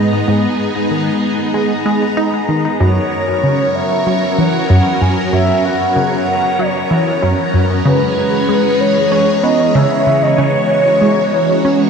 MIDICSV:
0, 0, Header, 1, 5, 480
1, 0, Start_track
1, 0, Tempo, 631579
1, 213, Time_signature, 4, 2, 24, 8
1, 9043, End_track
2, 0, Start_track
2, 0, Title_t, "Soft synth lead"
2, 0, Program_c, 0, 80
2, 2130, Note_on_c, 0, 73, 100
2, 2852, Note_on_c, 0, 76, 107
2, 2863, Note_off_c, 0, 73, 0
2, 3333, Note_on_c, 0, 78, 115
2, 3345, Note_off_c, 0, 76, 0
2, 3812, Note_on_c, 0, 80, 111
2, 3823, Note_off_c, 0, 78, 0
2, 4049, Note_off_c, 0, 80, 0
2, 4054, Note_on_c, 0, 76, 114
2, 4294, Note_on_c, 0, 78, 118
2, 4306, Note_off_c, 0, 76, 0
2, 5014, Note_on_c, 0, 73, 93
2, 5025, Note_off_c, 0, 78, 0
2, 5733, Note_off_c, 0, 73, 0
2, 5971, Note_on_c, 0, 71, 102
2, 6691, Note_on_c, 0, 73, 106
2, 6703, Note_off_c, 0, 71, 0
2, 7172, Note_on_c, 0, 75, 110
2, 7183, Note_off_c, 0, 73, 0
2, 7410, Note_on_c, 0, 76, 115
2, 7421, Note_off_c, 0, 75, 0
2, 7774, Note_on_c, 0, 75, 101
2, 7785, Note_off_c, 0, 76, 0
2, 7891, Note_on_c, 0, 73, 106
2, 7903, Note_off_c, 0, 75, 0
2, 9043, Note_off_c, 0, 73, 0
2, 9043, End_track
3, 0, Start_track
3, 0, Title_t, "Synth texture"
3, 0, Program_c, 1, 99
3, 0, Note_on_c, 1, 59, 82
3, 0, Note_on_c, 1, 82, 82
3, 9043, Note_off_c, 1, 59, 0
3, 9043, Note_off_c, 1, 82, 0
3, 9043, End_track
4, 0, Start_track
4, 0, Title_t, "String machine"
4, 0, Program_c, 2, 50
4, 0, Note_on_c, 2, 56, 79
4, 0, Note_on_c, 2, 59, 71
4, 0, Note_on_c, 2, 63, 73
4, 0, Note_on_c, 2, 68, 73
4, 0, Note_on_c, 2, 75, 91
4, 2103, Note_off_c, 2, 56, 0
4, 2103, Note_off_c, 2, 59, 0
4, 2103, Note_off_c, 2, 63, 0
4, 2103, Note_off_c, 2, 68, 0
4, 2104, Note_off_c, 2, 75, 0
4, 2132, Note_on_c, 2, 61, 75
4, 2132, Note_on_c, 2, 70, 73
4, 2133, Note_on_c, 2, 54, 83
4, 2133, Note_on_c, 2, 73, 86
4, 4033, Note_off_c, 2, 73, 0
4, 4052, Note_on_c, 2, 73, 93
4, 5942, Note_off_c, 2, 54, 0
4, 5942, Note_off_c, 2, 70, 0
4, 5953, Note_off_c, 2, 73, 0
4, 5971, Note_on_c, 2, 56, 76
4, 5971, Note_on_c, 2, 68, 73
4, 5971, Note_on_c, 2, 73, 88
4, 5972, Note_on_c, 2, 52, 84
4, 7873, Note_off_c, 2, 68, 0
4, 7892, Note_on_c, 2, 66, 73
4, 9043, Note_off_c, 2, 52, 0
4, 9043, Note_off_c, 2, 56, 0
4, 9043, Note_off_c, 2, 61, 0
4, 9043, Note_off_c, 2, 66, 0
4, 9043, Note_off_c, 2, 73, 0
4, 9043, End_track
5, 0, Start_track
5, 0, Title_t, "Synth arpeggio sound"
5, 0, Program_c, 3, 84
5, 0, Note_on_c, 3, 44, 76
5, 175, Note_off_c, 3, 44, 0
5, 212, Note_on_c, 3, 44, 99
5, 347, Note_off_c, 3, 44, 0
5, 692, Note_on_c, 3, 51, 73
5, 827, Note_off_c, 3, 51, 0
5, 1171, Note_on_c, 3, 56, 86
5, 1307, Note_off_c, 3, 56, 0
5, 1411, Note_on_c, 3, 56, 102
5, 1547, Note_off_c, 3, 56, 0
5, 1651, Note_on_c, 3, 63, 103
5, 1787, Note_off_c, 3, 63, 0
5, 1891, Note_on_c, 3, 51, 78
5, 2027, Note_off_c, 3, 51, 0
5, 2131, Note_on_c, 3, 42, 104
5, 2267, Note_off_c, 3, 42, 0
5, 2611, Note_on_c, 3, 49, 73
5, 2747, Note_off_c, 3, 49, 0
5, 3092, Note_on_c, 3, 54, 84
5, 3227, Note_off_c, 3, 54, 0
5, 3332, Note_on_c, 3, 52, 79
5, 3535, Note_off_c, 3, 52, 0
5, 3572, Note_on_c, 3, 42, 105
5, 3653, Note_off_c, 3, 42, 0
5, 3812, Note_on_c, 3, 42, 75
5, 4015, Note_off_c, 3, 42, 0
5, 4050, Note_on_c, 3, 42, 103
5, 4186, Note_off_c, 3, 42, 0
5, 4531, Note_on_c, 3, 49, 77
5, 4667, Note_off_c, 3, 49, 0
5, 5011, Note_on_c, 3, 54, 83
5, 5147, Note_off_c, 3, 54, 0
5, 5250, Note_on_c, 3, 52, 75
5, 5454, Note_off_c, 3, 52, 0
5, 5490, Note_on_c, 3, 42, 104
5, 5573, Note_off_c, 3, 42, 0
5, 5730, Note_on_c, 3, 42, 76
5, 5934, Note_off_c, 3, 42, 0
5, 5969, Note_on_c, 3, 49, 103
5, 6106, Note_off_c, 3, 49, 0
5, 6450, Note_on_c, 3, 56, 75
5, 6586, Note_off_c, 3, 56, 0
5, 6930, Note_on_c, 3, 61, 84
5, 7066, Note_off_c, 3, 61, 0
5, 7171, Note_on_c, 3, 59, 78
5, 7375, Note_off_c, 3, 59, 0
5, 7411, Note_on_c, 3, 49, 108
5, 7493, Note_off_c, 3, 49, 0
5, 7651, Note_on_c, 3, 49, 78
5, 7855, Note_off_c, 3, 49, 0
5, 7891, Note_on_c, 3, 49, 98
5, 8027, Note_off_c, 3, 49, 0
5, 8372, Note_on_c, 3, 56, 77
5, 8507, Note_off_c, 3, 56, 0
5, 8852, Note_on_c, 3, 61, 85
5, 8987, Note_off_c, 3, 61, 0
5, 9043, End_track
0, 0, End_of_file